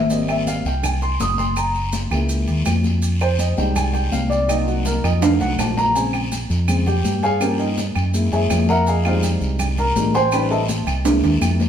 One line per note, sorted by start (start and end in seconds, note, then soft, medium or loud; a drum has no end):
0.00 0.59 G#1 loud
0.00 0.10 E5 loud
0.10 0.62 G3 medium
0.10 0.62 A#3 medium
0.10 0.63 C4 medium
0.10 0.28 D#5 medium
0.10 high conga soft
0.10 low agogo medium
0.10 long guiro medium
0.10 maracas medium
0.29 0.47 E5 medium
0.29 high conga soft
0.29 low agogo loud
0.29 claves medium
0.29 maracas soft
0.46 0.65 F5 medium
0.46 high conga medium
0.46 low agogo medium
0.46 short guiro medium
0.46 maracas medium
0.65 1.16 C2 medium
0.65 0.84 G5 medium
0.65 short guiro medium
0.65 maracas soft
0.83 1.02 G#5 medium
0.83 high conga soft
0.83 low conga medium
0.83 low agogo loud
0.83 long guiro medium
0.83 claves medium
0.83 maracas medium
1.02 1.20 C6 medium
1.02 high conga soft
1.02 low agogo medium
1.02 maracas soft
1.20 2.06 F#1 medium
1.20 1.38 D#6 loud
1.20 high conga medium
1.20 low timbale medium
1.20 short guiro medium
1.20 maracas medium
1.38 1.56 C6 loud
1.38 high conga medium
1.38 low agogo medium
1.38 short guiro medium
1.38 maracas soft
1.56 1.91 A#5 medium
1.56 low agogo loud
1.56 long guiro medium
1.56 claves medium
1.56 maracas medium
1.75 high conga soft
1.75 maracas soft
1.92 high conga medium
1.92 low agogo medium
1.92 short guiro medium
1.92 maracas medium
2.11 2.45 C#2 loud
2.11 2.63 G#3 medium
2.11 2.64 A#3 medium
2.11 2.64 E4 medium
2.11 low agogo loud
2.11 short guiro medium
2.11 claves medium
2.11 maracas soft
2.29 high conga soft
2.29 long guiro medium
2.29 maracas medium
2.47 2.65 D#2 medium
2.47 high conga soft
2.47 low agogo medium
2.47 maracas soft
2.65 3.52 F2 loud
2.65 high conga medium
2.65 low timbale medium
2.65 low agogo loud
2.65 short guiro medium
2.65 claves medium
2.65 maracas medium
2.84 high conga medium
2.84 short guiro medium
2.84 maracas soft
3.02 high conga soft
3.02 low agogo medium
3.02 long guiro medium
3.02 maracas medium
3.21 3.39 C5 medium
3.21 low agogo loud
3.21 claves medium
3.21 maracas soft
3.39 3.57 D#5 medium
3.39 high conga medium
3.39 low agogo medium
3.39 short guiro medium
3.39 maracas medium
3.57 4.09 C2 loud
3.57 4.44 G3 medium
3.57 4.45 G#3 medium
3.57 4.45 D#4 medium
3.57 3.75 G5 medium
3.57 short guiro medium
3.57 maracas soft
3.76 3.94 G#5 medium
3.76 high conga soft
3.76 low conga medium
3.76 low agogo loud
3.76 long guiro medium
3.76 claves medium
3.76 maracas medium
3.93 4.12 G5 medium
3.93 high conga soft
3.93 low agogo medium
3.93 maracas soft
4.12 4.98 C2 loud
4.12 4.30 F5 medium
4.12 high conga medium
4.12 short guiro medium
4.12 maracas medium
4.30 4.48 D5 medium
4.30 low agogo medium
4.30 short guiro medium
4.30 maracas soft
4.48 5.18 F#3 medium
4.48 5.18 A#3 soft
4.48 5.18 D#4 medium
4.48 4.67 D#5 medium
4.48 high conga soft
4.48 low agogo loud
4.48 long guiro medium
4.48 claves medium
4.48 maracas medium
4.62 4.65 F4 soft
4.67 4.85 F#4 medium
4.67 high conga soft
4.67 maracas soft
4.85 5.03 A#4 medium
4.85 high conga loud
4.85 low agogo medium
4.85 short guiro medium
4.85 maracas medium
5.04 5.38 F2 loud
5.04 5.22 D#5 medium
5.04 low agogo loud
5.04 short guiro medium
5.04 claves medium
5.04 maracas soft
5.21 5.91 F#3 medium
5.21 5.91 A3 medium
5.21 5.92 D#4 medium
5.21 5.40 F5 medium
5.21 high timbale loud
5.21 long guiro medium
5.21 maracas medium
5.40 5.57 C2 medium
5.40 5.58 F#5 medium
5.40 high conga soft
5.40 low timbale medium
5.40 low agogo medium
5.40 maracas soft
5.59 6.44 A#1 medium
5.59 5.77 A5 medium
5.59 high conga medium
5.59 low timbale loud
5.59 low agogo medium
5.59 short guiro medium
5.59 claves medium
5.59 maracas medium
5.77 5.95 A#5 loud
5.77 high conga medium
5.77 low timbale medium
5.77 short guiro medium
5.77 maracas soft
5.95 6.19 C#3 medium
5.95 6.19 G#3 medium
5.95 6.20 C4 medium
5.95 6.29 G#5 medium
5.95 low agogo medium
5.95 long guiro medium
5.95 maracas medium
6.13 high conga soft
6.13 low agogo loud
6.13 claves medium
6.13 maracas soft
6.32 high conga medium
6.32 low agogo medium
6.32 short guiro medium
6.32 maracas medium
6.50 7.01 F2 medium
6.50 short guiro medium
6.50 maracas soft
6.68 6.84 C#3 medium
6.68 6.85 G#3 soft
6.68 6.85 C4 medium
6.68 high conga soft
6.68 low conga medium
6.68 low agogo loud
6.68 long guiro medium
6.68 claves medium
6.68 maracas medium
6.87 7.21 G4 medium
6.87 7.21 G5 medium
6.87 high conga soft
6.87 low conga medium
6.87 low agogo medium
6.87 maracas soft
7.04 7.90 G2 medium
7.04 high conga medium
7.04 short guiro medium
7.04 maracas medium
7.23 7.41 G#4 medium
7.23 7.40 C#5 medium
7.23 7.41 F5 medium
7.23 7.41 G#5 loud
7.23 low agogo medium
7.23 short guiro medium
7.23 maracas soft
7.40 7.65 F3 medium
7.40 7.65 A#3 medium
7.40 7.65 C#4 medium
7.40 7.59 G4 medium
7.40 7.59 A#4 medium
7.40 7.59 C#5 medium
7.40 7.59 G5 medium
7.40 high conga soft
7.40 low agogo loud
7.40 long guiro medium
7.40 claves medium
7.40 maracas medium
7.59 7.77 D#4 medium
7.59 7.77 D#5 medium
7.59 high conga soft
7.59 maracas soft
7.77 high conga medium
7.77 low agogo medium
7.77 short guiro medium
7.77 maracas medium
7.95 8.30 F#2 loud
7.95 low agogo loud
7.95 short guiro medium
7.95 claves medium
7.95 maracas soft
8.14 8.66 G#3 medium
8.14 8.66 A#3 soft
8.14 8.66 E4 medium
8.14 high conga soft
8.14 long guiro medium
8.14 maracas medium
8.32 8.49 F#2 medium
8.32 8.67 G#4 medium
8.32 8.67 C#5 medium
8.32 8.67 E5 medium
8.32 8.66 G#5 medium
8.32 low agogo medium
8.32 maracas soft
8.50 9.36 F2 loud
8.50 high conga medium
8.50 low timbale medium
8.50 low agogo loud
8.50 short guiro medium
8.50 claves medium
8.50 maracas medium
8.69 8.87 A#4 medium
8.69 8.87 E5 medium
8.69 8.87 F#5 medium
8.69 8.86 A#5 loud
8.69 high conga medium
8.69 short guiro medium
8.69 maracas soft
8.87 9.05 G#4 medium
8.87 9.05 D#5 medium
8.87 9.05 F5 medium
8.87 9.05 G#5 medium
8.87 low agogo medium
8.87 long guiro medium
8.87 maracas medium
9.05 9.94 G3 medium
9.05 9.95 G#3 medium
9.05 9.95 D#4 medium
9.05 9.23 F4 medium
9.05 9.23 G#4 medium
9.05 9.23 C5 medium
9.05 9.23 F5 medium
9.05 low agogo loud
9.05 claves medium
9.05 maracas soft
9.23 high conga medium
9.23 low agogo medium
9.23 short guiro medium
9.23 maracas medium
9.41 9.92 C2 loud
9.41 short guiro medium
9.41 maracas soft
9.59 high conga soft
9.59 low conga medium
9.59 low agogo loud
9.59 long guiro medium
9.59 claves medium
9.59 maracas medium
9.77 10.12 A#4 medium
9.77 10.12 A#5 loud
9.77 high conga soft
9.77 low conga medium
9.77 low agogo medium
9.77 maracas soft
9.96 10.81 A1 loud
9.96 10.12 G3 medium
9.96 10.13 G#3 medium
9.96 10.13 D#4 medium
9.96 high conga medium
9.96 low timbale medium
9.96 short guiro medium
9.96 maracas medium
10.14 10.32 C5 loud
10.14 10.32 G5 loud
10.14 10.32 G#5 loud
10.14 10.32 C6 loud
10.14 low agogo medium
10.14 short guiro medium
10.14 maracas soft
10.32 10.57 G3 medium
10.32 10.57 C#4 medium
10.32 10.57 D#4 medium
10.32 10.51 B4 medium
10.32 10.50 B5 medium
10.32 high conga soft
10.32 low agogo loud
10.32 long guiro medium
10.32 claves medium
10.32 maracas medium
10.51 10.62 A4 medium
10.51 10.62 D#5 medium
10.51 10.62 E5 medium
10.51 10.62 A5 loud
10.51 high conga soft
10.51 maracas soft
10.69 high conga loud
10.69 low agogo medium
10.69 short guiro medium
10.69 maracas medium
10.87 11.21 C2 loud
10.87 low agogo loud
10.87 short guiro medium
10.87 claves medium
10.87 maracas soft
11.05 11.57 G#3 medium
11.05 11.57 A#3 medium
11.05 11.58 E4 medium
11.05 high conga soft
11.05 high timbale loud
11.05 long guiro medium
11.05 maracas medium
11.23 11.40 D#2 medium
11.23 high timbale medium
11.23 low agogo medium
11.23 maracas soft
11.41 11.69 F2 loud
11.41 high conga medium
11.41 low agogo loud
11.41 short guiro medium
11.41 claves medium
11.41 maracas medium
11.60 high conga medium
11.60 low timbale medium
11.60 short guiro medium
11.60 maracas soft